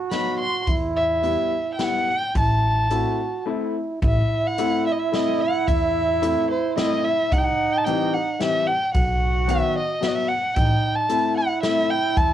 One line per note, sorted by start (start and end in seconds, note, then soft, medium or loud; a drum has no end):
0.00 0.70 F#4 loud
0.11 0.40 F#3 medium
0.11 0.40 B3 medium
0.11 0.40 D#4 medium
0.11 0.38 B5 medium
0.11 snare medium
0.11 closed hi-hat soft
0.39 0.66 C6 loud
0.67 1.34 E2 loud
0.67 2.11 E4 loud
0.67 kick medium
0.67 closed hi-hat soft
0.96 1.70 E5 medium
1.22 1.51 G3 medium
1.22 1.51 B3 medium
1.22 1.52 E4 medium
1.22 closed hi-hat soft
1.74 1.85 G5 medium
1.79 2.07 G3 medium
1.79 2.07 B3 medium
1.79 2.07 E4 medium
1.79 snare medium
1.79 closed hi-hat soft
1.83 2.11 F#5 medium
2.10 2.37 G5 medium
2.35 3.02 A1 loud
2.35 2.88 E4 medium
2.35 3.44 A5 medium
2.35 kick medium
2.35 closed hi-hat medium
2.90 3.19 A3 medium
2.90 3.19 C4 medium
2.90 3.19 E4 medium
2.90 3.43 F#4 medium
2.90 closed hi-hat soft
3.46 3.74 A3 medium
3.46 3.74 C4 medium
3.46 3.74 E4 medium
3.46 3.99 E4 medium
4.02 4.19 A1 loud
4.02 7.33 E4 loud
4.02 4.48 E5 medium
4.02 kick medium
4.02 closed hi-hat soft
4.47 4.86 F#5 medium
4.58 4.85 A3 medium
4.58 4.85 C4 medium
4.58 4.86 E4 medium
4.58 closed hi-hat medium
4.86 4.93 E5 medium
4.91 5.00 D#5 medium
4.99 5.16 E5 medium
5.11 5.39 A3 medium
5.11 5.40 C4 medium
5.11 5.40 E4 medium
5.11 5.42 D#5 medium
5.11 snare medium
5.11 closed hi-hat soft
5.41 5.68 F#5 medium
5.67 6.33 E2 loud
5.67 6.49 E5 medium
5.67 kick medium
5.67 closed hi-hat medium
6.22 6.49 A3 medium
6.22 6.49 C4 medium
6.22 6.50 E4 medium
6.22 closed hi-hat medium
6.50 6.75 C5 medium
6.76 7.04 A3 medium
6.76 7.04 C4 medium
6.76 7.04 E4 medium
6.76 7.06 D#5 medium
6.76 snare medium
6.76 closed hi-hat soft
7.04 7.34 E5 medium
7.32 7.48 C2 loud
7.32 8.70 D#4 loud
7.32 7.40 F#5 medium
7.32 kick medium
7.32 closed hi-hat medium
7.38 7.45 G5 medium
7.44 7.74 F#5 medium
7.73 7.79 G5 loud
7.78 7.86 A5 medium
7.84 8.14 E3 medium
7.84 8.13 G3 medium
7.84 8.13 C4 medium
7.84 8.15 G5 medium
7.84 closed hi-hat soft
8.14 8.33 F#5 medium
8.33 8.42 F#5 medium
8.39 8.67 E3 medium
8.39 8.67 G3 medium
8.39 8.67 C4 medium
8.39 8.68 E5 loud
8.39 snare medium
8.39 closed hi-hat soft
8.67 8.93 G5 loud
8.94 9.59 B1 loud
8.94 10.26 F#4 loud
8.94 9.52 F#5 medium
8.94 kick loud
8.94 closed hi-hat soft
9.47 9.75 D#3 medium
9.47 9.75 F#3 medium
9.47 9.75 B3 medium
9.47 9.76 E5 medium
9.47 closed hi-hat medium
9.78 10.05 D#5 medium
10.01 10.28 F#3 medium
10.01 10.29 B3 medium
10.01 10.29 F#4 medium
10.01 10.09 E5 loud
10.01 snare medium
10.01 closed hi-hat soft
10.08 10.16 D#5 medium
10.15 10.30 E5 medium
10.28 10.56 F#5 medium
10.54 10.72 A1 loud
10.54 11.12 D#4 medium
10.54 10.97 G5 medium
10.54 kick medium
10.54 closed hi-hat medium
10.95 11.36 A5 medium
11.09 11.36 A3 medium
11.09 11.37 C4 medium
11.09 11.37 E4 medium
11.09 12.33 E4 loud
11.09 closed hi-hat medium
11.37 11.62 F#5 medium
11.63 11.90 A3 medium
11.63 11.90 C4 medium
11.63 11.90 E4 medium
11.63 11.92 E5 medium
11.63 snare medium
11.63 closed hi-hat soft
11.90 12.18 G5 loud
12.17 12.33 E2 medium
12.17 12.33 A5 loud
12.17 kick loud
12.17 closed hi-hat soft